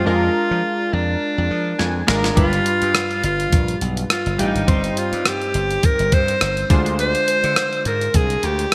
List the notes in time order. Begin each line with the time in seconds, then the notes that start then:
0.05 F2 G#3 D4 F4 A#4
0.51 F3
0.93 F2 D4
1.38 F2
1.51 F3
1.79 F2 G#5, snare
2.07 G#1 G#3 D4 F4 A#4 F5, snare
2.24 snare
2.36 G1 G2 G3 D4 F4 B4, kick, closed hi-hat
2.53 closed hi-hat
2.66 closed hi-hat
2.82 G2, closed hi-hat
2.95 cross-stick, closed hi-hat
3.11 closed hi-hat
3.24 G1 F4, closed hi-hat
3.40 closed hi-hat
3.53 A#1, kick, closed hi-hat
3.68 closed hi-hat
3.81 B1, closed hi-hat
3.97 closed hi-hat
4.10 F4, cross-stick, closed hi-hat
4.26 G1, closed hi-hat
4.38 A1 G3 D4 D#4 F4 G4, closed hi-hat
4.55 G#1, closed hi-hat
4.67 G1 G2 G3 C4 D#4 C5, kick, closed hi-hat
4.84 closed hi-hat
4.97 F4, closed hi-hat
5.13 G2, closed hi-hat
5.25 G4, cross-stick, closed hi-hat
5.42 closed hi-hat
5.54 G1, closed hi-hat
5.71 closed hi-hat
5.83 A#4, kick, closed hi-hat
5.99 G1, closed hi-hat
6.12 G2 C5, kick, closed hi-hat
6.28 closed hi-hat
6.41 G1, cross-stick, closed hi-hat
6.57 closed hi-hat
6.70 D2 D3 G#3 D4 F4 C5, kick, closed hi-hat
6.86 closed hi-hat
6.99 C5, closed hi-hat
7.15 closed hi-hat
7.28 closed hi-hat
7.44 D3, closed hi-hat
7.56 cross-stick, closed hi-hat
7.73 closed hi-hat
7.85 G#2 A#4, closed hi-hat
8.01 closed hi-hat
8.14 C2 G#4, kick, closed hi-hat
8.30 closed hi-hat
8.43 D2 G4, closed hi-hat
8.59 closed hi-hat